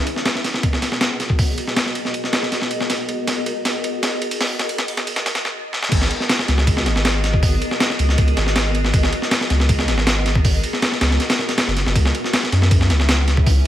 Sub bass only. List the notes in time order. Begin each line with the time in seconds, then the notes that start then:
5.92 G#1
6.48 C#2
6.86 G#1
7.99 C#2
8.18 C#2
8.37 G#1
8.94 G#1
9.50 C#2
9.88 G#1
11.01 C#2
11.67 F#1
11.86 F#1
11.96 C#2
12.52 F#2
12.90 C#2